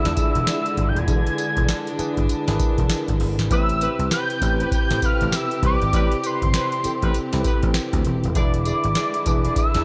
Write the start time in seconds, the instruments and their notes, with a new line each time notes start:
Already playing: string section D3 G#3 E4, tine electric piano D4 E4 G#4 B4 D5, analog synth lead E6
0.05 slap bass E2, tine electric piano D4 E4 F4 D5, snare, closed hi-hat
0.13 tine electric piano G#4, kick, closed hi-hat, tambourine
0.35 slap bass E1, closed hi-hat
0.47 analog synth lead E6, snare, closed hi-hat, tambourine
0.66 closed hi-hat
0.77 slap bass G#1, kick, closed hi-hat
0.89 analog synth lead G6
0.95 slap bass D#1, analog synth lead G#6, closed hi-hat
1.08 slap bass E1, tine electric piano D4 E4 G#4 A4, string section D4, kick, closed hi-hat, tambourine
1.16 tine electric piano B4
1.27 closed hi-hat
1.38 closed hi-hat, tambourine
1.57 slap bass E1, kick, closed hi-hat
1.68 snare, closed hi-hat, tambourine
1.87 closed hi-hat
1.99 tine electric piano D4 E4 G#4 B4, muted slap bass stroke, closed hi-hat, tambourine
2.17 slap bass G1, kick, closed hi-hat
2.29 closed hi-hat, tambourine
2.48 slap bass G#1, tine electric piano D4 E4 G#4 A#4, snare, closed hi-hat
2.55 tine electric piano B4
2.59 kick, closed hi-hat, tambourine
2.78 slap bass E1, kick, closed hi-hat
2.89 snare, closed hi-hat, tambourine
3.08 slap bass G#1, kick, closed hi-hat
3.20 slap bass G1, open hi-hat
3.38 slap bass G#1, snare, closed hi-hat
3.50 slap bass A1, string section C3 G4 B4, tine electric piano B3 E4 G4 B4, horn section C4 G4 B4, analog synth lead E6, kick, closed hi-hat, tambourine
3.57 tine electric piano C4
3.69 closed hi-hat
3.80 horn section C4 G4 B4, closed hi-hat, tambourine
3.99 slap bass C2, closed hi-hat
4.11 horn section C4 G4 B4, analog synth lead G6, snare, closed hi-hat, tambourine
4.30 closed hi-hat
4.41 slap bass A1, tine electric piano C4 E4 G4 B4, kick, closed hi-hat, tambourine
4.60 horn section C4 G4 B4, closed hi-hat
4.71 analog synth lead G6, muted slap bass stroke, kick, closed hi-hat, tambourine
4.90 slap bass A2, tine electric piano C4 E4 G4 A4, snare, closed hi-hat
4.98 horn section C4, tine electric piano B4
5.02 horn section G4 B4, analog synth lead F6, kick, closed hi-hat, tambourine
5.21 slap bass A1, closed hi-hat
5.32 analog synth lead E6, snare, closed hi-hat, tambourine
5.51 closed hi-hat
5.62 slap bass C2, horn section C4 G4 B4, kick, closed hi-hat
5.66 analog synth lead D6
5.82 slap bass G#1, closed hi-hat
5.93 slap bass A1, string section C4, tine electric piano C4 E4 G4 D5, horn section C4 G4 B4, kick, closed hi-hat, tambourine
6.12 closed hi-hat
6.24 horn section C4 G4 B4, analog synth lead C6, closed hi-hat, tambourine
6.42 slap bass G1, kick, closed hi-hat
6.54 horn section C4 G4 B4, snare, closed hi-hat, tambourine
6.72 closed hi-hat
6.84 tine electric piano C4 E4 G4 A4, muted slap bass stroke, closed hi-hat, tambourine
7.02 slap bass A1, horn section C4 G4 B4, kick, closed hi-hat
7.14 closed hi-hat, tambourine
7.33 slap bass C2, tine electric piano C4 E4 G4 A4, snare, closed hi-hat
7.41 horn section C4, tine electric piano B4, kick, closed hi-hat, tambourine
7.45 horn section G4 B4
7.63 slap bass A1, kick, closed hi-hat
7.74 snare, closed hi-hat, tambourine
7.93 slap bass D2, kick, closed hi-hat
8.05 slap bass E1, closed hi-hat
8.24 slap bass D#1, closed hi-hat
8.35 slap bass E1, string section D3 G#3 E4, tine electric piano D4 E4 G#4 B4, horn section E4 G#4 D5, analog synth lead D6, kick, closed hi-hat, tambourine
8.54 closed hi-hat
8.65 horn section E4 G#4 D5, closed hi-hat, tambourine
8.84 slap bass G#1, closed hi-hat
8.95 horn section E4 G#4 D5, snare, closed hi-hat, tambourine
9.14 closed hi-hat
9.26 slap bass E1, tine electric piano D4 E4 G#4 B4, kick, closed hi-hat, tambourine
9.44 horn section E4 G#4 D5, closed hi-hat
9.56 analog synth lead E6, kick, closed hi-hat, tambourine
9.74 slap bass E2, tine electric piano D4 E4 G#4 D5, snare, closed hi-hat